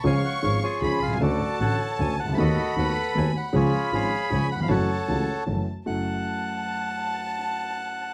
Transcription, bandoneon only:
\new Staff \with { instrumentName = "Bandoneon" } { \time 3/4 \key fis \minor \tempo 4 = 155 << { gis''8 fis''8 eis''8 cis''4 eis''8 | d''4 fis''4 gis''8 fis''8 | dis''4 fis''4 gis''8 fis''8 | cis''4 eis''4 gis''8 fis''16 eis''16 |
fis''2 r4 | fis''2.~ | fis''2. | } \\ { <cis'' eis''>4. <eis' gis'>4. | <fis' a'>4 <a' cis''>4. r8 | <fis' a'>4 <a' b'>4. r8 | <eis' gis'>4 <gis' cis''>4. r8 |
<a' cis''>2 r4 | r2. | r2. | } >> }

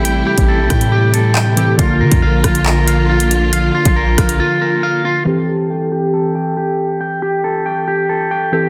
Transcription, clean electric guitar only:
\new Staff \with { instrumentName = "Clean electric guitar" } { \time 4/4 \key a \phrygian \tempo 4 = 138 <g' a' g''>8 g'8 a'8 g''8 g'8 a'8 g''8 g'8 | f'8 bes'8 f''8 f'8 bes'8 f''8 f'4 | f''8 f'8 bes'8 f''8 f'8 bes'8 f''8 f'8 | g'8 a'8 g''8 g'8 a'8 g''8 g'4 |
g''8 g'8 a'8 g''8 g'8 a'8 g''8 g'8 | }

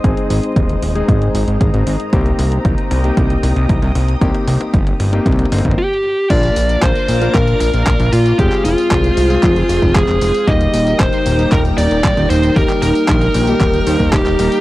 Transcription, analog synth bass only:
\new Staff \with { instrumentName = "Analog synth bass" } { \clef bass \time 4/4 \key ees \major \tempo 4 = 115 aes,,16 r16 aes,,16 r16 ees,,8 ees,,8 aes,,8 aes,,16 aes,,16 aes,,16 aes,,16 aes,,16 r16 | c,8 c,8 c,16 r16 c,8 c,8 c,16 c,16 c,16 c,16 c,8 | c,16 r16 c,16 r16 g,,8 g,,8 c,8 g,,16 g,,16 r4 | bes,,8 bes,,8 bes,,16 r16 bes,,8 bes,,8 bes,,16 bes,,16 bes,,16 bes,,16 bes,,8 |
f,,16 r16 f,,16 r16 c,8 c,8 f,,8 f,,16 f,,16 f,,16 f,,16 f,,16 r16 | ees,,8 ees,,8 ees,,16 r16 ees,,8 ees,,8 ees,,16 ees,,16 ees,,16 ees,,16 ees,,8 | ees,,16 r16 ees,,16 r16 bes,,8 bes,,8 ees,,8 ees,16 ees,16 ees,,16 ees,,16 ees,,16 r16 | }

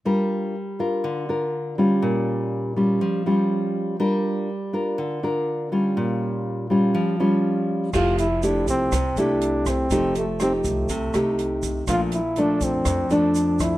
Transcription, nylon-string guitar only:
\new Staff \with { instrumentName = "Nylon-string guitar" } { \time 4/4 \key f \major \tempo 4 = 122 << { <d' f' bes'>4 r8 <d' f' bes'>4 <d' f' bes'>4 <g des' f'>8~ | <g des' f'>4. <g des' f'>4 <g des' f'>4. | <d' f' bes'>4 r8 <d' f' bes'>4 <d' f' bes'>4 <g des' f'>8~ | <g des' f'>4. <g des' f'>4 <g des' f'>4. |
<a e' g'>8 r8 <a e' g'>4 r8 <a e' g'>4. | <a ees' g'>8 r8 <a ees' g'>4 r8 <a ees' g'>4. | <f a d'>8 r8 <f a d'>4. <f a d'>4. | } \\ { g2 d2 | bes,2 f2 | g2 d2 | bes,2 f2 |
f2 c2 | f2 c2 | bes,2 f,2 | } >> }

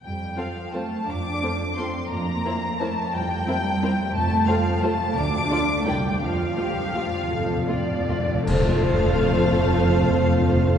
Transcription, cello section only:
\new Staff \with { instrumentName = "Cello section" } { \time 3/4 \key f \major \tempo 4 = 169 g4 f4 a4 | d'2 c'4 | bes2 a4 | g2. |
a4 f4 a4 | d'2 g4 | f2.~ | f2 r4 |
f2.~ | f2. | }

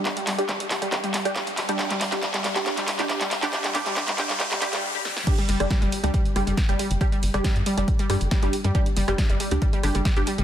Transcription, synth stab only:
\new Staff \with { instrumentName = "Synth stab" } { \time 4/4 \key c \dorian \tempo 4 = 138 <g d' g'>16 r8 <g d' g'>8 r8 <g d' g'>16 <g d' g'>16 r8 <g d' g'>8 r8 <g d' g'>16 | <g d' g'>16 r8 <g d' g'>16 <g d' g'>16 r8 <g d' g'>16 <g d' g'>16 r8 <g d' g'>16 <g d' g'>16 r8 <g d' g'>16 | <g d' g'>16 r16 <g d' g'>16 r16 <g d' g'>16 r16 <g d' g'>16 r16 <g d' g'>16 r16 <g d' g'>16 r4 r16 | <g d' g'>16 r8 <g d' g'>8 r8 <g d' g'>16 r8 <g d' g'>8 r16 <g d' g'>16 r8 |
<g d' g'>16 r8 <g d' g'>8 r8 <g d' g'>16 r8 <g d' g'>8 r16 <g d' g'>16 r8 | <g d' g'>16 r8 <g d' g'>8 r8 <g d' g'>16 r8 <g d' g'>8 r16 <g d' g'>16 r8 | }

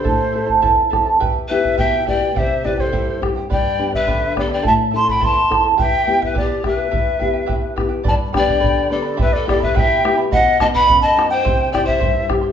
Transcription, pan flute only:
\new Staff \with { instrumentName = "Pan flute" } { \time 2/4 \key e \minor \tempo 4 = 105 a'4~ a'16 r8. | r8 b'8 e''8 d''8 | c''8 b'16 a'8. r8 | d''8. b'8. a'16 d''16 |
e''8 a''16 g''16 a''8. r16 | e''8. b'16 g'8 b'8~ | b'4. r8 | d''8 d''4 a'8 |
b'16 a'16 a'16 b'16 e''8. r16 | dis''8 dis''16 fis''8 dis''8 c''16~ | c''8 d''16 c''8. r8 | }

